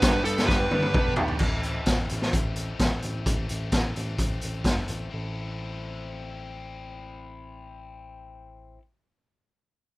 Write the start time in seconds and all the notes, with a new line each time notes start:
Already playing: G4 B4 F#5 B5 D6
0.02 G2 D3 G3 B3 D4 G4, kick, snare, closed hi-hat
0.25 G2 D3 G3 B3 D4 G4 A4, closed hi-hat
0.38 snare, closed hi-hat
0.47 G2 D3 G3 B3 D4 G4 B4, kick, snare
0.70 G2 D3 G3 B3 D4 G4, high tom
0.82 high tom
0.94 E2 G2 D3 G3 B3 D4 G4, kick, mid tom
1.16 G2 D3 G3 B3 D4 G4, floor tom
1.28 floor tom
1.39 A1 E3 A3, kick, crash
1.43 C4
1.63 closed hi-hat
1.86 A1, kick, snare, closed hi-hat
2.09 A1 E3 A3 C4, closed hi-hat
2.22 snare
2.33 A1, kick, closed hi-hat
2.56 closed hi-hat
2.79 A1, kick, snare, closed hi-hat
3.02 A1, closed hi-hat
3.26 A1 E3 A3 C4, kick, closed hi-hat
3.49 A1, closed hi-hat
3.72 A1, kick, snare, closed hi-hat
3.96 A1 E3 A3 C4, closed hi-hat
4.18 A1, kick, closed hi-hat
4.41 A1, closed hi-hat
4.64 G2, kick, snare, closed hi-hat
4.88 A1, closed hi-hat
5.10 A1 C4 E4 A4